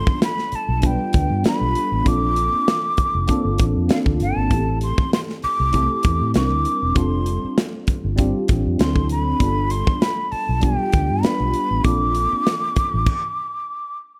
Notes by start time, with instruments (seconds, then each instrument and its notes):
Already playing: tine electric piano G3 B3 D4 F4 A4, flute C6
0.07 muted fingered electric bass stroke, kick
0.22 flute B5, snare, closed hi-hat
0.39 snare
0.52 flute A5, muted fingered electric bass stroke, closed hi-hat
0.69 fingered electric bass B1
0.81 tine electric piano G3 B3 D4 F4 B4, kick, closed hi-hat
0.86 flute G5
1.13 fingered electric bass D2, kick, closed hi-hat
1.30 fingered electric bass G2
1.43 tine electric piano G3 B3 D4 F4 A4, muted fingered electric bass stroke, snare, closed hi-hat
1.47 flute B5
1.61 fingered electric bass B1
1.75 closed hi-hat
1.92 fingered electric bass A1
2.04 fingered electric bass A#1, tine electric piano A#3 C4 D4 F4, flute D6, kick, closed hi-hat
2.08 tine electric piano A4
2.36 closed hi-hat
2.54 muted fingered electric bass stroke
2.68 snare, closed hi-hat
2.97 muted fingered electric bass stroke, kick, closed hi-hat
3.15 fingered electric bass F1
3.27 tine electric piano A#3 C4 D4 F4 A4, kick, closed hi-hat
3.45 fingered electric bass G1
3.58 fingered electric bass A1, kick, closed hi-hat
3.75 fingered electric bass F2
3.87 tine electric piano A#3 C4 D4 F4 A4, snare, closed hi-hat
3.92 flute F5
4.06 fingered electric bass D2, kick
4.20 fingered electric bass G1, flute A5, closed hi-hat
4.36 fingered electric bass G#1
4.49 fingered electric bass A1, tine electric piano A3 A#3 E4 G4, kick, closed hi-hat
4.53 tine electric piano C4 A4
4.81 flute C6, closed hi-hat
4.98 muted fingered electric bass stroke, kick
5.13 flute C6, snare, closed hi-hat
5.29 snare
5.42 flute D6, muted fingered electric bass stroke, open hi-hat
5.60 fingered electric bass C2
5.72 tine electric piano A3 C4 E4 G4, kick, closed hi-hat
5.76 tine electric piano A4
6.03 fingered electric bass E2, kick, closed hi-hat
6.21 fingered electric bass A2
6.34 fingered electric bass C2, tine electric piano G3 C4 D4 D#4, flute D6, snare, closed hi-hat
6.38 tine electric piano A#4
6.43 tine electric piano E4
6.52 fingered electric bass D2
6.65 closed hi-hat
6.82 fingered electric bass E1
6.95 fingered electric bass F1, tine electric piano G3 C4 D4 F4 A4, flute C6, kick, closed hi-hat
7.26 closed hi-hat
7.44 muted fingered electric bass stroke
7.58 snare, closed hi-hat
7.87 muted fingered electric bass stroke, kick, closed hi-hat
8.05 fingered electric bass G1
8.16 tine electric piano G3 C4 D4 F4 G4, kick, closed hi-hat
8.48 fingered electric bass A1, kick, closed hi-hat
8.66 fingered electric bass F2
8.78 fingered electric bass D2, tine electric piano F#3 C4 D4 E4, flute C6, snare, closed hi-hat
8.82 tine electric piano A4
8.96 kick
9.09 flute B5, closed hi-hat
9.39 fingered electric bass G1, tine electric piano G3 B3 D4 F4, kick, closed hi-hat
9.43 tine electric piano A4
9.70 flute C6, closed hi-hat
9.87 kick
10.02 flute B5, snare, closed hi-hat
10.32 flute A5, muted fingered electric bass stroke, open hi-hat
10.49 fingered electric bass B1
10.60 tine electric piano G3 B3 D4 F4 G4, flute G5, kick, closed hi-hat
10.92 fingered electric bass D2, kick, closed hi-hat
11.10 fingered electric bass G2
11.22 tine electric piano G3 B3 D4 F4, flute B5, muted fingered electric bass stroke, snare, closed hi-hat
11.26 tine electric piano B4
11.40 fingered electric bass B1
11.54 closed hi-hat
11.71 fingered electric bass A1
11.83 fingered electric bass A#1, tine electric piano A#3 C4 D4 F4, flute D6, kick, closed hi-hat
11.87 tine electric piano A4
12.15 closed hi-hat
12.33 muted fingered electric bass stroke
12.47 snare, closed hi-hat
12.76 muted fingered electric bass stroke, kick, closed hi-hat
12.94 fingered electric bass A1
13.06 kick, crash